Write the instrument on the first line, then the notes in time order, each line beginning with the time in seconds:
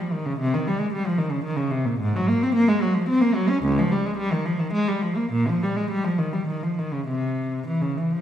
cello
0.00 F3
0.12 D#3
0.26 C#3
0.39 C3
0.54 D#3
0.67 G3
0.80 G#3
0.93 G3
1.06 F3
1.18 D#3
1.31 C#3
1.44 D#3
1.57 C#3
1.71 C3
1.86 A#2
2.00 G#2
2.16 F#3
2.29 A#3
2.43 C4
2.55 A#3
2.68 G#3
2.82 F#3
2.94 F3
3.09 C4
3.21 A#3
3.35 F#3
3.49 C#4
3.63 C#2
3.78 F3
3.92 G3
4.06 G#3
4.17 G3
4.32 D#3
4.46 F3
4.60 D#3
4.73 G#3
4.88 G3
5.02 F3
5.16 A#3
5.32 A#2
5.49 F3
5.63 G3
5.76 G#3
5.90 G3
6.04 F3
6.18 D#3
6.33 G3
6.48 D#3
6.63 F3
6.79 D#3
6.93 C#3
7.08 C3
7.67 E3
7.82 C#3
7.97 E3
8.12 F3